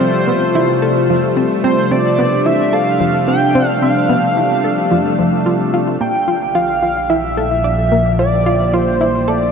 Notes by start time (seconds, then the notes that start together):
Already playing: C3 F3 G3 A3 F4 E6
0.00 C4 C5
0.27 B3
0.55 E4
0.82 A4
1.10 F3
1.37 C4
1.64 C4 D4 C5
1.91 C4 D5
2.19 B3
2.46 E4 E5
2.73 A4 F5
3.00 F3
3.28 C4 G5
3.55 C4
3.82 C4 F5
4.09 B3
4.37 E4
4.64 A4
4.91 F3
5.19 F3
5.46 F4
5.74 F4
6.00 A#1 D3 F3 G3 A#3 F4 G4 G5
6.28 F4
6.55 F4 F5
6.83 F4
7.10 E4 E5
7.37 A4
7.64 D5
7.92 A#3
8.19 F4 D5
8.46 F4
8.73 F4 C5
9.01 E4
9.28 A4 D5